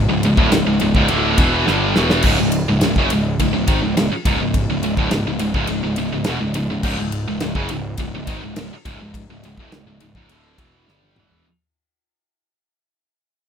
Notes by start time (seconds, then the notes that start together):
0.09 C#1 C#2 G#2
0.23 C#1 C#2 G#2, ride
0.37 D1 D2 A2, kick
0.52 C#1 C#2 G#2, snare, ride
0.67 C#1 C#2 G#2
0.80 C#1 C#2 G#2, ride
0.95 C#1 C#2 G#2, kick
1.08 D1 D2 A2 D3, ride
1.38 E1 E2 B2 E3, kick, ride
1.66 G1 G2 D3 G3, snare
1.96 E1 E2 B2 E3, snare
2.10 snare
2.22 C#1 C#2 G#2, kick, crash
2.39 C#1 C#2 G#2
2.52 ride
2.69 C#1 C#2 G#2
2.81 C#1 C#2 G#2, snare, ride
2.96 F#1 F#2 C#3, kick
3.10 C#1 C#2 G#2, ride
3.40 C#1 C#2 G#2, kick, ride
3.53 C#1 C#2 G#2
3.67 G#1 G#2 D#3, kick, ride
3.82 C#1 C#2 G#2
3.97 C#1 C#2 G#2, snare, ride
4.12 muted distorted electric guitar stroke, muted picked electric bass stroke
4.25 C#1 C#2 G#2, kick, ride
4.41 C#1 C#2 G#2
4.54 kick, ride
4.70 C#1 C#2 G#2
4.83 C#1 C#2 G#2, ride
4.97 D1 D2 A2, kick
5.11 C#1 C#2 G#2, snare, ride
5.26 C#1 C#2 G#2
5.39 C#1 C#2 G#2, ride
5.54 C#1 C#2 G#2, kick
5.67 C#1 C#2 G#2, ride
5.83 C#1 C#2 G#2
5.96 C#1 C#2 G#2, ride
6.12 C#1 C#2 G#2
6.24 E1 E2 B2, snare, ride
6.41 C#1 C#2 G#2
6.54 C#1 C#2 G#2, ride
6.70 C#1 C#2 G#2
6.83 C#1 C#2 G#2, kick, crash
6.99 C#1 C#2 G#2
7.12 ride
7.28 C#1 C#2 G#2
7.40 C#1 C#2 G#2, snare, ride
7.55 F#1 F#2 C#3, kick
7.69 C#1 C#2 G#2, ride
7.97 C#1 C#2 G#2, kick, ride
8.14 C#1 C#2 G#2
8.27 G#1 G#2 D#3, kick, ride
8.43 C#1 C#2 G#2
8.56 C#1 C#2 G#2, snare, ride
8.73 muted distorted electric guitar stroke, muted picked electric bass stroke
8.85 C#1 C#2 G#2, kick, ride
9.01 C#1 C#2 G#2
9.14 kick, ride
9.29 C#1 C#2 G#2
9.43 C#1 C#2 G#2, ride
9.57 D1 D2 A2, kick
9.72 C#1 C#2 G#2, snare, ride
9.87 C#1 C#2 G#2
10.00 C#1 C#2 G#2, ride
10.15 C#1 C#2 G#2, kick
10.29 D1 D2 A2 D3, ride
10.58 E1 E2 B2 E3, kick, ride
10.88 G1 G2 D3 G3, snare
11.03 high tom
11.16 E1 E2 B2 E3, mid tom
11.31 floor tom